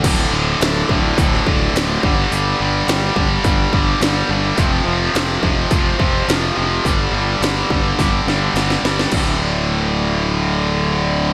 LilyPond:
<<
  \new Staff \with { instrumentName = "Distorted electric guitar" } { \clef bass \time 4/4 \key g \major \tempo 4 = 106 <d, a, d>8 <d, a, d>8 <d, a, d>8 <d, a, d>8 <d, a, d>8 <d, a, d>8 <d, a, d>8 <g, d g>8 | <g, d g>8 <g, d g>8 <g, d g>8 <g, d g>8 <g, d g>8 <g, d g>8 <g, d g>8 <g, d g>8 | <f, c f>8 <f, c f>8 <f, c f>8 <f, c f>8 <f, c f>8 <f, c f>8 <f, c f>8 <f, c f>8 | <g, d g>8 <g, d g>8 <g, d g>8 <g, d g>8 <g, d g>8 <g, d g>8 <g, d g>8 <g, d g>8 |
<d, a, d>1 | }
  \new Staff \with { instrumentName = "Fingered electric bass" } { \clef bass \time 4/4 \key g \major d,,8 d,,8 d,,8 d,,8 d,,8 d,,8 d,,8 g,,8 | g,,8 g,,8 g,,8 g,,8 g,,8 g,,8 g,,8 g,,8 | f,,8 f,,8 f,,8 f,,8 f,,8 f,,8 f,,8 f,,8 | g,,8 g,,8 g,,8 g,,8 g,,8 g,,8 g,,8 g,,8 |
d,,1 | }
  \new DrumStaff \with { instrumentName = "Drums" } \drummode { \time 4/4 <cymc hho bd>4 <hho sn>8 bd8 <hho bd>16 sn16 bd8 <hho sn>8 bd8 | hho4 <hho sn>8 bd8 <hho bd>8 bd8 <hho sn>4 | <hho bd>4 <hho sn>8 bd8 <hho bd>8 bd8 <hho sn>4 | <hho bd>4 <hho sn>8 bd8 <hho bd sn>8 sn8 <hho sn>16 sn16 sn16 sn16 |
<cymc bd>4 r4 r4 r4 | }
>>